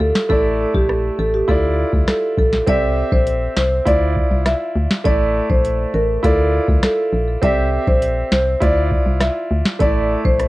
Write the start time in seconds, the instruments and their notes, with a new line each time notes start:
Already playing: grand piano E4 F4 D5
0.00 fm bass D2, marimba A4
0.15 snare
0.29 fm bass A1, grand piano A3 E4 D5, marimba A4, kick
0.75 fm bass A#1, marimba G4, kick
0.89 cross-stick
1.19 fm bass A1, marimba A4
1.34 marimba G4
1.48 fm bass D2, grand piano E4 F4 D5, marimba A4, kick
1.93 fm bass D2, kick
2.08 marimba A4, cross-stick, snare
2.38 fm bass A#1, marimba A4, kick
2.53 snare
2.67 fm bass C2, grand piano C4 G4 E5, marimba D5, kick, closed hi-hat
3.12 fm bass A#1, marimba C5, kick
3.27 closed hi-hat
3.57 fm bass C2, marimba C5, snare
3.85 fm bass D2, grand piano E4 F4 D5, marimba D5, kick, closed hi-hat
4.16 kick
4.31 fm bass C2
4.46 marimba E5, cross-stick, snare, closed hi-hat
4.75 fm bass D2
4.91 snare
5.04 fm bass A1, grand piano A3 E4 D5, marimba D5, kick, closed hi-hat
5.50 fm bass A#1, marimba C5, kick
5.65 closed hi-hat
5.94 fm bass A1, marimba A#4
6.23 fm bass D2, grand piano E4 F4 D5, marimba A4, kick, closed hi-hat
6.68 fm bass D2, kick
6.83 marimba A4, cross-stick, snare, closed hi-hat
7.13 fm bass A#1
7.42 fm bass C2, grand piano C4 G4 E5, marimba D5, kick, closed hi-hat
7.87 fm bass A#1, marimba C5, kick
8.02 closed hi-hat
8.32 fm bass C2, marimba C5, snare
8.60 fm bass D2, grand piano E4 F4 D5, marimba D5, kick, closed hi-hat
8.91 kick
9.06 fm bass C2
9.21 marimba E5, cross-stick, snare, closed hi-hat
9.51 fm bass D2
9.66 snare
9.79 fm bass A1, grand piano A3 E4 D5, marimba D5, kick, closed hi-hat
10.25 fm bass A#1, marimba C5, kick
10.40 cross-stick, closed hi-hat